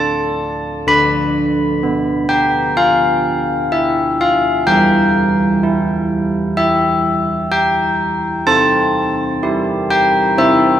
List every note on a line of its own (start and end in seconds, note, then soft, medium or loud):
0.00 0.83 D3 soft
0.00 0.87 A3 soft
0.00 0.82 A5 medium
0.87 4.64 D3 medium
0.87 2.26 B5 medium
1.83 4.68 B3 soft
2.29 2.75 G5 medium
2.77 3.69 F5 medium
3.72 4.18 E5 medium
4.21 4.66 F5 medium
4.67 8.43 E3 medium
4.67 6.53 G5 medium
5.63 8.48 E4 soft
6.57 7.49 E5 medium
7.52 8.43 G5 medium
8.47 10.33 C4 medium
8.47 9.86 A5 loud
9.43 10.34 E4 soft
9.43 10.34 G4 soft
9.90 10.36 G5 medium
10.38 10.80 C4 medium
10.38 10.80 E5 medium